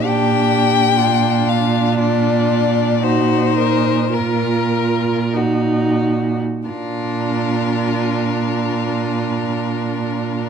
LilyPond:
<<
  \new Staff \with { instrumentName = "Violin" } { \time 3/4 \key bes \major \tempo 4 = 50 g''4. f''8 d''4 | c''4 bes'4 r4 | bes'2. | }
  \new Staff \with { instrumentName = "Violin" } { \time 3/4 \key bes \major g'4 f'4 f'4 | ges'8 bes'8 bes'4 ges'4 | f'2. | }
  \new Staff \with { instrumentName = "Viola" } { \time 3/4 \key bes \major d'4 d'2 | ees'4 f'4 ees'4 | d'2. | }
  \new Staff \with { instrumentName = "Cello" } { \clef bass \time 3/4 \key bes \major bes,2.~ | bes,2. | bes,2. | }
>>